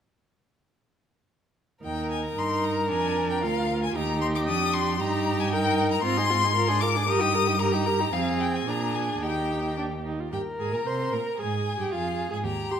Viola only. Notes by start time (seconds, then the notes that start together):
1.83 D#4
2.37 D#4
2.90 D4
3.43 F4
3.95 D#4
4.48 D4
5.01 D#4
5.52 D#4
6.05 C4
6.17 D#4
6.30 C4
6.43 D#4
6.57 F4
6.69 D4
6.82 F4
6.96 D4
7.08 G4
7.21 D#4
7.34 G4
7.48 D#4
7.61 G4
7.74 D#4
7.87 G4
8.00 D#4
8.13 C4
8.68 D4
9.22 D#4
9.78 D4
10.06 D#4
10.20 F4
10.32 G4
10.60 G#4
10.72 A#4
10.86 C5
11.12 A#4
11.39 G#4
11.79 G4
11.92 F4
12.30 G#4
12.70 G4